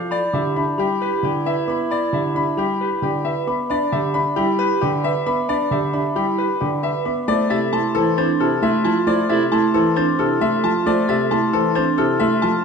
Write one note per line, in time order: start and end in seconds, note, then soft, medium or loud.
0.00 0.18 F3 medium
0.00 0.18 A4 medium
0.00 0.18 F5 medium
0.00 0.18 D6 medium
0.11 3.43 E4 medium
0.11 0.41 D5 medium
0.11 0.40 B5 medium
0.33 0.63 D3 medium
0.33 0.63 G4 medium
0.33 0.63 E5 medium
0.33 0.63 D6 medium
0.56 0.85 D4 medium
0.56 0.85 E5 medium
0.56 0.85 B5 medium
0.78 1.08 G3 medium
0.78 1.08 G4 medium
0.78 1.08 B5 medium
1.01 1.30 G4 medium
1.01 1.30 B4 medium
1.23 1.52 D3 medium
1.23 1.53 G4 medium
1.23 1.52 D5 medium
1.46 1.75 B4 medium
1.46 1.75 E5 medium
1.67 1.97 B3 medium
1.67 1.97 E5 medium
1.67 1.98 B5 medium
1.67 1.97 D6 medium
1.91 2.20 D5 medium
1.91 2.20 B5 medium
2.13 2.42 D3 medium
2.13 2.42 G4 medium
2.13 2.42 E5 medium
2.13 2.42 D6 medium
2.35 2.64 D4 medium
2.35 2.64 E5 medium
2.35 2.65 B5 medium
2.57 2.87 G3 medium
2.57 2.87 G4 medium
2.57 2.87 B5 medium
2.80 3.09 G4 medium
2.80 3.10 B4 medium
3.02 3.32 D3 medium
3.02 3.32 G4 medium
3.02 3.32 D5 medium
3.25 3.54 B4 medium
3.25 3.54 E5 medium
3.47 3.76 B3 medium
3.47 3.77 E5 medium
3.47 3.77 B5 medium
3.47 3.77 D6 medium
3.70 3.99 D4 medium
3.70 3.99 D5 medium
3.70 3.99 B5 medium
3.92 4.21 D3 medium
3.92 4.21 G4 medium
3.92 4.21 E5 medium
3.92 4.21 D6 medium
4.14 4.44 D4 medium
4.14 4.44 E5 medium
4.14 4.43 B5 medium
4.36 4.66 G3 loud
4.36 4.66 E4 medium
4.36 4.66 G4 medium
4.36 4.66 B5 medium
4.59 4.88 G4 medium
4.59 4.88 B4 medium
4.81 5.11 D3 medium
4.81 5.11 G4 medium
4.81 5.11 D5 medium
4.81 5.11 D6 medium
5.04 5.33 B4 medium
5.04 5.33 E5 medium
5.26 5.56 B3 medium
5.26 5.55 E5 medium
5.26 5.56 B5 medium
5.26 5.56 D6 medium
5.49 5.78 D4 medium
5.49 5.78 D5 medium
5.49 5.78 B5 medium
5.71 6.00 D3 medium
5.71 6.00 G4 medium
5.71 6.00 E5 medium
5.71 6.00 D6 medium
5.93 6.23 D4 medium
5.93 6.23 E5 medium
5.93 6.23 B5 medium
6.16 6.45 G3 medium
6.16 6.45 E4 medium
6.16 6.45 G4 medium
6.16 6.45 B5 medium
6.38 6.68 G4 medium
6.38 6.68 B4 medium
6.61 6.90 D3 medium
6.61 6.90 G4 medium
6.61 6.90 D5 medium
6.61 6.90 D6 medium
6.83 7.12 B4 medium
6.83 7.12 E5 medium
7.05 7.35 B3 medium
7.05 7.35 E5 medium
7.05 7.35 B5 medium
7.05 7.27 D6 medium
7.28 7.57 A3 loud
7.28 7.44 E4 soft
7.28 7.57 C5 medium
7.28 7.57 D5 medium
7.28 7.57 D6 medium
7.50 7.79 C3 medium
7.50 7.66 E4 medium
7.50 7.80 A4 medium
7.50 7.79 E5 medium
7.50 7.80 A6 medium
7.73 8.02 A3 medium
7.73 8.02 E4 medium
7.73 7.89 E4 medium
7.73 8.02 A5 medium
7.73 8.02 C6 medium
7.95 8.24 E3 loud
7.95 8.11 E4 medium
7.95 8.24 A4 medium
7.95 8.24 C5 medium
8.17 8.47 C4 medium
8.17 8.47 D4 loud
8.17 8.33 E4 medium
8.17 8.47 C5 medium
8.17 8.47 A6 loud
8.40 8.69 C3 medium
8.40 8.69 E4 medium
8.40 8.56 E4 medium
8.40 8.69 A4 medium
8.40 8.69 F6 medium
8.62 8.91 A3 loud
8.62 8.78 E4 medium
8.62 8.91 A4 medium
8.62 8.92 E5 medium
8.62 8.92 C6 medium
8.84 9.14 F3 medium
8.84 9.00 E4 medium
8.84 9.14 F4 medium
8.84 9.14 A5 medium
9.07 9.36 A3 loud
9.07 9.22 E4 medium
9.07 9.36 C5 medium
9.07 9.36 D5 medium
9.07 9.36 D6 medium
9.29 9.59 C3 medium
9.29 9.45 E4 loud
9.29 9.59 A4 medium
9.29 9.59 E5 medium
9.29 9.59 A6 medium
9.52 9.81 A3 medium
9.52 9.81 E4 medium
9.52 9.68 E4 medium
9.52 9.81 A5 medium
9.52 9.81 C6 medium
9.74 10.03 E3 loud
9.74 9.90 E4 medium
9.74 10.03 A4 medium
9.74 10.03 C5 medium
9.96 10.26 C4 medium
9.96 10.26 D4 loud
9.96 10.12 E4 medium
9.96 10.26 C5 medium
9.96 10.26 A6 loud
10.19 10.48 C3 medium
10.19 10.48 E4 medium
10.19 10.35 E4 medium
10.19 10.48 A4 medium
10.19 10.48 F6 medium
10.41 10.70 A3 medium
10.41 10.57 E4 soft
10.41 10.70 A4 medium
10.41 10.70 E5 medium
10.41 10.71 C6 medium
10.63 10.93 F3 medium
10.63 10.93 F4 loud
10.63 10.93 A5 medium
10.86 11.15 A3 loud
10.86 11.15 C5 medium
10.86 11.15 D5 medium
10.86 11.15 D6 medium
11.08 11.38 C3 medium
11.08 11.37 A4 loud
11.08 11.38 E5 medium
11.08 11.38 A6 loud
11.31 11.60 A3 medium
11.31 11.60 E4 medium
11.31 11.60 A5 medium
11.31 11.60 C6 medium
11.53 11.83 E3 loud
11.53 11.82 A4 medium
11.53 11.82 C5 medium
11.75 12.05 C4 medium
11.75 12.05 D4 medium
11.75 12.05 C5 medium
11.75 12.05 A6 loud
11.98 12.27 C3 medium
11.98 12.27 E4 medium
11.98 12.27 A4 medium
11.98 12.27 F6 medium
12.20 12.50 A3 loud
12.20 12.50 A4 medium
12.20 12.49 E5 loud
12.20 12.50 C6 medium
12.42 12.64 F3 medium
12.42 12.64 F4 loud
12.42 12.64 A5 medium